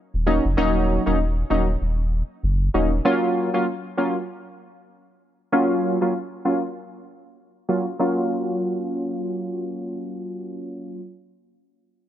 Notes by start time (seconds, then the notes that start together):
0.14 D#1
0.26 F#3 A#3 C#4 D#4
0.45 F1
0.57 D#1 F#3 A#3 C#4 D#4
1.06 D#1 F#3 A#3 C#4 D#4
1.50 D#1 F#3 A#3 C#4 D#4
1.81 D#1
2.43 F#1
2.74 D#1 F#3 A#3 C#4 D#4
3.05 F#3 A#3 C#4 F4
3.54 F#3 A#3 C#4 F4
3.97 F#3 A#3 C#4 F4
5.52 F#3 A#3 C#4 F4
6.01 F#3 A#3 C#4 F4
6.45 F#3 A#3 C#4 F4
7.69 F#3 A#3 C#4 F4
7.99 F#3 A#3 C#4 F4